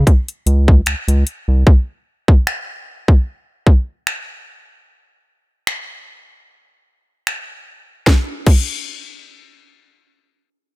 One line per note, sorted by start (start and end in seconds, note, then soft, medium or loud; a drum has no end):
0.07 kick medium
0.07 closed hi-hat medium
0.28 closed hi-hat medium
0.46 0.81 C#2 medium
0.46 closed hi-hat medium
0.68 kick medium
0.86 0.95 C#2 soft
0.86 finger snap loud
0.86 closed hi-hat medium
1.08 1.24 C#2 medium
1.08 closed hi-hat medium
1.27 closed hi-hat medium
1.48 1.64 C2 medium
1.67 kick loud
2.28 kick medium
2.47 finger snap loud
3.08 kick medium
3.67 kick medium
4.07 finger snap loud
5.67 finger snap loud
7.27 finger snap loud
8.07 kick loud
8.07 snare medium
8.47 kick loud
8.47 crash medium